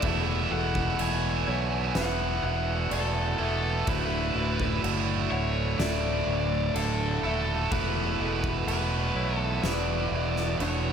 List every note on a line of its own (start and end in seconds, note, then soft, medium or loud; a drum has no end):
0.00 0.46 E1 loud
0.00 3.36 E2 medium
0.00 2.43 E2 medium
0.00 3.37 B2 medium
0.00 3.40 E3 loud
0.00 0.54 A3 medium
0.00 1.13 E4 medium
0.00 0.48 E5 loud
0.00 kick loud
0.00 crash medium
0.04 3.40 A3 loud
0.04 3.38 B3 loud
0.04 3.38 E4 loud
0.04 3.84 A4 medium
0.51 0.95 E1 medium
0.51 2.91 B2 medium
0.51 1.47 A4 medium
0.51 0.96 F#5 loud
0.75 kick medium
0.99 1.43 E1 loud
0.99 2.90 A3 medium
0.99 1.92 G#5 loud
0.99 crash medium
1.47 1.91 B1 loud
1.47 3.90 E4 medium
1.47 1.95 C#5 medium
1.95 2.39 E1 loud
1.95 3.37 B3 medium
1.95 2.91 B4 medium
1.95 2.43 F#5 loud
1.95 snare loud
1.95 crash medium
2.43 2.87 E1 loud
2.43 3.90 E3 medium
2.43 2.93 F#5 loud
2.90 3.35 E1 loud
2.90 5.79 A3 medium
2.90 3.91 A4 medium
2.90 3.39 D5 medium
2.90 crash medium
3.38 3.83 E1 medium
3.38 3.86 E2 medium
3.38 3.86 B2 medium
3.38 3.87 E3 medium
3.38 3.88 A3 medium
3.38 3.87 B3 medium
3.38 3.85 B3 loud
3.38 3.89 E4 loud
3.38 4.34 E5 medium
3.86 4.31 D1 medium
3.86 7.20 D2 loud
3.86 6.27 D2 medium
3.86 7.21 A2 medium
3.86 7.21 D3 medium
3.86 7.68 F#3 medium
3.86 7.24 A3 loud
3.86 7.69 D4 medium
3.86 7.23 E4 loud
3.86 4.80 B4 loud
3.86 kick loud
3.86 crash medium
4.34 4.79 D1 medium
4.34 6.25 A2 medium
4.34 5.32 E5 medium
4.60 kick medium
4.83 5.27 F#1 loud
4.83 6.74 D3 medium
4.83 crash medium
5.30 5.75 D1 medium
5.30 8.81 E4 medium
5.30 5.76 C#5 loud
5.30 5.80 F#5 medium
5.78 6.23 D1 loud
5.78 7.23 A3 medium
5.78 7.19 D5 loud
5.78 6.74 D5 loud
5.78 snare loud
5.78 crash medium
6.27 6.70 D1 loud
6.27 7.71 A2 medium
6.74 7.19 D1 loud
6.74 7.72 D3 medium
6.74 7.74 A4 medium
6.74 7.24 D5 medium
6.74 crash medium
7.23 7.67 D#1 medium
7.23 7.70 D2 medium
7.23 7.70 A2 medium
7.23 7.70 D3 medium
7.23 8.23 A3 medium
7.23 7.72 A3 medium
7.23 7.74 E4 medium
7.23 7.72 E5 medium
7.71 8.15 E1 medium
7.71 10.93 E2 medium
7.71 10.12 E2 medium
7.71 10.93 B2 loud
7.71 10.93 E3 loud
7.71 10.93 A3 loud
7.71 10.93 B3 medium
7.71 10.93 E4 loud
7.71 10.93 A4 medium
7.71 8.64 B4 loud
7.71 kick loud
7.71 crash medium
8.19 8.63 E1 medium
8.19 10.60 B2 medium
8.19 9.16 A4 medium
8.44 kick loud
8.67 9.11 E1 loud
8.67 10.61 A3 medium
8.67 9.38 B4 loud
8.67 crash medium
9.15 9.59 B1 loud
9.15 10.93 E4 medium
9.15 9.64 C#5 medium
9.38 9.63 A4 loud
9.63 10.07 E1 loud
9.63 10.93 B3 medium
9.63 10.60 B4 medium
9.63 10.59 D5 loud
9.63 snare loud
9.63 crash medium
10.12 10.55 E1 loud
10.12 10.93 E3 medium
10.36 snare soft
10.59 10.93 E1 loud
10.59 10.93 A3 medium
10.59 10.93 D4 loud
10.59 10.93 C#5 medium
10.59 crash medium